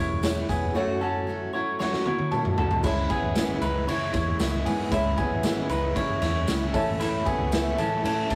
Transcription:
Already playing: E1 E4 G#4 C#5
0.00 G#3 C#4
0.22 E3 G#3 C#4 E4 G#4 C#5, snare, closed hi-hat, tambourine
0.49 E1 G#3 B3 C#4 E4 G#4, kick, closed hi-hat, tambourine
0.74 F#2 C#3 F#3 A3 C#4 F#4 A4 C#5
1.01 F#3 A3 C#4 F#4 A4
1.27 F#3 A3 C#4 F#4
1.53 F#3 A3 C#4 E4 F#4 C#5
1.79 F#2 C#3 F#3 A3 C#4 F#4 C#5, snare
1.93 snare
2.05 F#3 A3 C#4 E4 F#4 C#5, high tom
2.19 high tom
2.31 F#3 A3 C#4 F#4 A5, mid tom
2.45 mid tom
2.57 F#3 A3 C#4 F#4 A4, floor tom
2.71 floor tom
2.83 C#2 C#3 E3 G#3 C#4 E4 G#4 C#5 E5, kick, crash, tambourine
3.09 G#3 B3 C#4 E4 G#4, kick, ride, tambourine
3.22 A1
3.35 G#1 C#3 E3 G#3 C#4 E4, snare, ride, tambourine
3.61 C#2 G#3 C#4 D#4 E4 B4, ride, tambourine
3.87 C#3 E3 G#3 C#4 E4 C#5, ride, tambourine
4.13 E2 G#3 C#4 E4 C#5, kick, snare, ride, tambourine
4.39 C#2 C#3 E3 G#3 C#4 E4, snare, ride, tambourine
4.65 G#2 G#3 B3 C#4 E4 G#4, open hi-hat, ride, tambourine
4.91 C#2 C#3 E3 G#3 C#4 E4 G#4 C#5 E5, kick, hi-hat pedal, ride, tambourine
5.17 G#3 B3 C#4 E4 G#4, kick, ride, tambourine
5.31 A1
5.43 G#1 C#3 E3 G#3 C#4 E4, snare, ride, tambourine
5.69 C#2 G#3 C#4 D#4 E4 B4, ride, tambourine
5.95 C#3 E3 G#3 C#4 E4 C#5, kick, ride
6.22 E2 G#3 C#4 E4 C#5, snare, ride, tambourine
6.47 C#2 C#3 E3 G#3 C#4 E4, snare, ride, tambourine
6.73 A1 E3 A3 C#4 E4 A4 C#5 E5, kick, open hi-hat, ride, tambourine
7.00 A2 E3 A3 C#4 E4, hi-hat pedal, ride, tambourine
7.25 A3 B3 C#4 E4 G#4, kick, ride, tambourine
7.39 C#2
7.51 A2 E3 A3 C#4 E4, snare, ride, tambourine
7.77 A1 A3 C#4 E4 A4, ride, tambourine
8.04 A2 E3 A3 C#4 E4 A4, ride, tambourine
8.30 A1 C#4 E4 A4, kick, snare, ride, tambourine

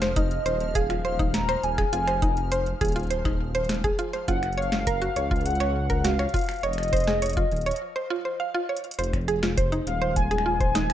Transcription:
Already playing: F1 F3 F6
0.02 C5, snare, closed hi-hat
0.16 D#4 D#5, kick, closed hi-hat
0.31 closed hi-hat
0.46 D#1 C5, closed hi-hat
0.60 closed hi-hat
0.75 G#4 F5, kick, closed hi-hat
0.90 F4, finger snap, closed hi-hat
1.05 C5
1.19 D#4, kick, closed hi-hat
1.34 A#5, snare, closed hi-hat
1.49 C5, finger snap, closed hi-hat
1.63 D#1 G#5, closed hi-hat
1.78 G#4, finger snap, kick, closed hi-hat
1.93 F1 F4, closed hi-hat
2.08 C5, finger snap, closed hi-hat
2.22 D#4, kick, closed hi-hat
2.37 closed hi-hat
2.52 C5, closed hi-hat
2.66 closed hi-hat
2.81 D#1 G#4, kick, closed hi-hat
2.85 closed hi-hat
2.88 closed hi-hat
2.92 F4, closed hi-hat
2.96 closed hi-hat
3.00 closed hi-hat
3.03 closed hi-hat
3.07 C5, closed hi-hat
3.11 closed hi-hat
3.25 D#4, finger snap, kick, closed hi-hat
3.55 C5, closed hi-hat
3.64 closed hi-hat
3.69 snare, closed hi-hat
3.74 closed hi-hat
3.84 G#4, kick, closed hi-hat
3.99 F4, closed hi-hat
4.13 C5, closed hi-hat
4.28 F#1 F4 F#5, kick, closed hi-hat
4.43 finger snap, closed hi-hat
4.53 closed hi-hat
4.58 C#5 F5
4.62 closed hi-hat
4.72 snare, closed hi-hat
4.87 A#4, kick, closed hi-hat
5.02 F#4, closed hi-hat
5.16 C#2 C#5, closed hi-hat
5.31 F4, kick, closed hi-hat
5.36 closed hi-hat
5.41 closed hi-hat
5.46 F#5, closed hi-hat
5.55 closed hi-hat
5.60 C#5, finger snap, closed hi-hat
5.90 A#4, kick, closed hi-hat
6.04 F#4 F5, snare, closed hi-hat
6.19 C#5, finger snap, closed hi-hat
6.29 closed hi-hat
6.34 F4, kick, closed hi-hat
6.36 closed hi-hat
6.39 closed hi-hat
6.41 closed hi-hat
6.44 closed hi-hat
6.46 finger snap, closed hi-hat
6.49 closed hi-hat
6.51 closed hi-hat
6.54 closed hi-hat
6.56 closed hi-hat
6.59 closed hi-hat
6.61 C#5 D#5, closed hi-hat
6.63 F1, closed hi-hat
6.73 closed hi-hat
6.78 finger snap, closed hi-hat
6.83 closed hi-hat
6.88 closed hi-hat
6.93 C5, kick, closed hi-hat
6.97 closed hi-hat
7.00 closed hi-hat
7.04 snare, closed hi-hat
7.07 G#4, closed hi-hat
7.22 C#5, closed hi-hat
7.26 closed hi-hat
7.29 closed hi-hat
7.33 kick, closed hi-hat
7.37 F4, closed hi-hat
7.52 D#1, closed hi-hat
7.56 closed hi-hat
7.61 closed hi-hat
7.66 C#5, closed hi-hat
7.71 D#5, closed hi-hat
7.76 closed hi-hat
7.96 C5
8.10 F4
8.25 C5
8.40 F5
8.54 F4
8.69 C#5
8.77 closed hi-hat
8.84 closed hi-hat
8.91 closed hi-hat
8.94 closed hi-hat
8.99 F1 G#3 C5, closed hi-hat
9.04 F3, closed hi-hat
9.13 finger snap, kick, closed hi-hat
9.18 D#4
9.28 G#4, closed hi-hat
9.33 C5
9.43 F4, snare, closed hi-hat
9.57 C5, kick, closed hi-hat
9.68 D#5
9.72 D#4, closed hi-hat
9.87 D#1 F5, closed hi-hat
10.02 C5
10.16 G#5, kick, closed hi-hat
10.31 G#4, closed hi-hat
10.38 finger snap
10.46 F4 G#5
10.60 C5, kick, closed hi-hat
10.75 D#4, snare, closed hi-hat
10.90 finger snap, closed hi-hat

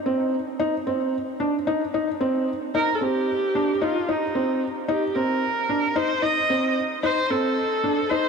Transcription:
0.06 C4
0.60 D#4
0.87 C4
1.40 D4
1.67 D#4
1.94 D#4
2.21 C4
2.75 D#4 A#4
2.95 A4
3.01 C4 G4
3.55 D4
3.82 D#4 F4
4.09 D#4
4.35 C4
4.88 D#4 G4
5.15 C4 A#4
5.69 D4
5.96 D#4 C5
6.22 D#4 D#5
6.50 C4
7.03 D#4 C5
7.30 C4 A4
7.84 D4
8.10 D#4 C5

